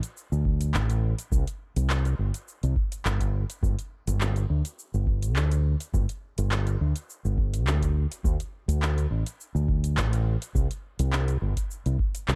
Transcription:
0.03 closed hi-hat, shaker
0.17 shaker
0.32 D2, shaker
0.45 kick
0.61 closed hi-hat, shaker
0.74 A1, clap, shaker
0.90 closed hi-hat, shaker
1.19 closed hi-hat, shaker
1.32 C2, kick, shaker
1.47 closed hi-hat, shaker
1.76 C2, closed hi-hat, shaker
1.90 clap, shaker
2.05 closed hi-hat, shaker
2.19 G1
2.34 closed hi-hat, shaker
2.48 shaker
2.63 C2, closed hi-hat, shaker
2.76 kick
2.92 closed hi-hat, shaker
3.05 G1, clap, shaker
3.20 kick, closed hi-hat, shaker
3.50 closed hi-hat, shaker
3.63 G1, kick, shaker
3.79 closed hi-hat, shaker
4.07 G1, closed hi-hat, shaker
4.21 clap, shaker
4.36 closed hi-hat, shaker
4.50 D2
4.65 closed hi-hat, shaker
4.79 shaker
4.94 G1, shaker
5.07 kick
5.23 closed hi-hat, shaker
5.36 D2, clap, shaker
5.51 closed hi-hat, shaker
5.80 closed hi-hat, shaker
5.94 G1, kick, shaker
6.09 closed hi-hat, shaker
6.38 G1, closed hi-hat, shaker
6.51 clap, shaker
6.67 closed hi-hat, shaker
6.81 D2
6.96 closed hi-hat, shaker
7.10 shaker
7.25 G1, shaker
7.38 kick
7.54 closed hi-hat, shaker
7.67 D2, clap, shaker
7.82 kick, closed hi-hat, shaker
8.12 closed hi-hat, shaker
8.24 D2, kick, shaker
8.40 closed hi-hat, shaker
8.68 D2, closed hi-hat, shaker
8.82 clap, shaker
8.98 closed hi-hat, shaker
9.11 A1
9.26 closed hi-hat, shaker
9.41 shaker
9.55 D2, shaker
9.68 kick
9.84 closed hi-hat, shaker
9.97 A1, clap, shaker
10.13 closed hi-hat, shaker
10.42 closed hi-hat, shaker
10.55 C2, kick, shaker
10.71 closed hi-hat, shaker
10.99 C2, closed hi-hat, shaker
11.13 clap, shaker
11.28 closed hi-hat, shaker
11.42 G1
11.57 kick, closed hi-hat, shaker
11.71 shaker
11.86 C2, closed hi-hat, shaker
11.99 kick
12.15 closed hi-hat, shaker
12.28 C2, clap, shaker

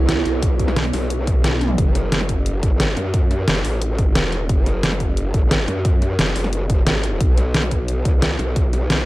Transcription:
Already playing: C#2 B3 E4 F#4 B4 C#5 D5 E5
0.09 snare, closed hi-hat
0.26 B1, closed hi-hat
0.43 kick, closed hi-hat
0.59 kick, closed hi-hat
0.68 snare
0.76 B1, snare, closed hi-hat
0.85 snare
0.93 B1, snare, open hi-hat
1.10 closed hi-hat
1.27 kick, closed hi-hat
1.44 B1, snare, closed hi-hat, high tom
1.53 high tom
1.61 closed hi-hat, mid tom
1.70 mid tom
1.78 F#1, kick, closed hi-hat
1.95 snare, closed hi-hat
2.12 snare, closed hi-hat
2.21 snare
2.29 kick, closed hi-hat
2.46 closed hi-hat
2.63 G#1, kick, closed hi-hat
2.80 snare, closed hi-hat
2.97 F#2, snare, closed hi-hat
3.14 kick, closed hi-hat
3.31 snare, closed hi-hat
3.48 F#1, snare, closed hi-hat
3.65 A1, open hi-hat
3.82 closed hi-hat
3.99 kick, closed hi-hat
4.15 E1, snare, closed hi-hat
4.32 closed hi-hat
4.49 F#1, kick, closed hi-hat
4.66 snare, closed hi-hat
4.83 snare, closed hi-hat
4.92 snare
5.00 kick, closed hi-hat
5.17 closed hi-hat
5.34 G#1, kick, closed hi-hat
5.51 snare, closed hi-hat
5.68 F#2, snare, closed hi-hat
5.85 kick, closed hi-hat
6.02 snare, closed hi-hat
6.19 F#1, snare, closed hi-hat
6.36 F#1, open hi-hat
6.44 snare
6.53 closed hi-hat
6.70 kick, closed hi-hat
6.87 G#1, snare, closed hi-hat
7.04 closed hi-hat
7.21 B1, kick, closed hi-hat
7.38 snare, closed hi-hat
7.54 snare, closed hi-hat
7.63 snare
7.71 kick, closed hi-hat
7.88 closed hi-hat
8.05 C#2, kick, closed hi-hat
8.22 snare, closed hi-hat
8.39 B1, snare, closed hi-hat
8.56 kick, closed hi-hat
8.73 snare, closed hi-hat
8.90 B1, snare, closed hi-hat

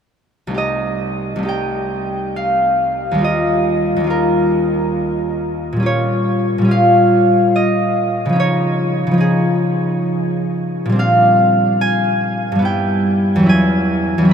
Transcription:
0.47 C2 A3 D#4
0.54 G4 D#5
1.36 C2 A3
1.43 D#4 G4
1.49 G5
2.36 F5
3.11 D#2 G3
3.18 D#4 F4
3.24 D#5
3.96 D#2 G3
4.04 D#4 F4
4.10 A#4
5.73 A#2 G3
5.80 C#4 F4
5.86 C#5
6.58 A#2 G3
6.65 C#4 F4
6.71 F5
7.56 D#5
8.26 C#3 F3
8.33 C#4 D#4
8.40 C#5
9.07 C#3
9.11 F3 C#4
9.18 D#4 G#4
10.86 A#2 G3
10.92 C4 D4
10.99 F5
11.81 G#5
12.52 G2 G3
12.59 B3 E4
12.65 G5
13.36 E2 F#3
13.43 C#4 E4
13.49 G#5
14.18 E2 F#3
14.25 C#4 E4

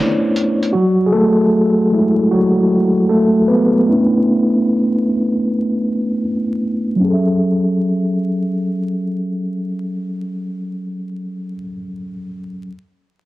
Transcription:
Already playing: A3 C#4 D4 E4 C5 C#5 D5
0.36 closed hi-hat
0.63 closed hi-hat
0.73 F#3 F#4
1.06 G#4
1.13 A3 A4
1.92 G#3 A3 E4
2.31 F#3 F#4
3.09 A3 A4
3.48 B3 B4
3.88 A3 C#4 D4 E4
6.96 F#3 C#4
7.04 G#4
7.09 A4
7.13 E5

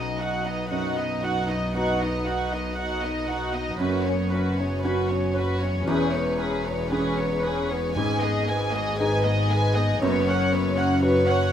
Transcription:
Already playing: B1 B2 B3 D#4 B4 D#5
0.17 D#4 F#4 F#5
0.44 B3 D#4 B4 D#5
0.70 F#2 D#4 F#4 D#5 F#5
0.96 B3 D#4 B4 D#5
1.22 D#4 F#4 F#5
1.48 B3 D#4 D#5
1.74 F#3 B3 D#4 F#4 F#5
2.01 B3 D#4 D#5
2.25 D#4 F#4 F#5
2.52 B3 D#4 B4 D#5
2.77 D#4 F#4 D#5 F#5
3.02 B3 D#4 B4 D#5
3.27 D#4 F#4 F#5
3.53 B3 D#4 D#5
3.78 F#1 F#2 C#4 F#4 B4
4.04 B3 C#4 C#5
4.30 C#4 F#4 B4
4.56 B3 C#4 C#5
4.81 C#4 F#4 B4 C#5
4.86 F#4
5.08 B3 C#4 C#5
5.34 C#4 F#4 B4
5.38 F#4
5.59 B3 C#4 C#5
5.86 E1 E2 C#4 G#4 B4
6.13 B3 B4 C#5
6.39 C#4 G#4 B4
6.64 B3 B4 C#5
6.91 C#4 G#4 B4 C#5
7.17 B3 B4 C#5
7.43 C#4 G#4 B4
7.69 B3 C#4 B4 C#5
7.96 G#1 G#2 G#3 B4 G#5
8.21 B3 G#4 D#5
8.47 G#3 G#4 B4 G#5
8.73 B3 G#4 D#5
8.98 G#3 D#4 G#4 B4 D#5 G#5
9.24 B3 G#4 D#5
9.51 G#3 G#4 B4 G#5
9.76 B3 D#4 G#4 D#5
10.02 F#1 F#2 B3 B4 C#5
10.27 C#4 C#5 F#5
10.53 B3 B4 C#5
10.77 C#4 C#5 F#5
11.02 B3 F#4 B4 C#5 F#5
11.27 C#4 C#5 F#5

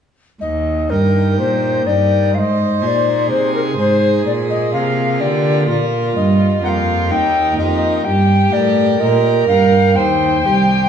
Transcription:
0.41 D#2 D#5
0.90 G2 D#4 G4 A#4
1.38 A#2 C5
1.86 G2 D#4 G4 A#4 D5
2.34 G#2 C5 F5
2.38 D#5
2.81 A#2 D#4 G#4 C5 D#5
2.87 D5
3.29 C3 G#4 C5
3.54 A#4
3.77 G#2 D#4 G#4 C5
4.25 A#2 D5
4.50 D#5
4.73 C3 A#3 F4 A#4 F5
5.20 D3 G4 D5
5.68 A#2 A#3 F4 A#4
6.16 G2 D#5
6.63 F2 A#3 G4 A#4 F#5
6.68 F5
7.10 D#2 D#4 G5
7.57 F2 A#3 G4 A#4 D#5
8.05 G2 G4 G5
8.52 A2 G4 A#4 D5
9.00 A#2 A#4 D#5
9.47 G2 G4 A#4 F5
9.96 D#2 C5 G5
10.45 C2 G4 C5

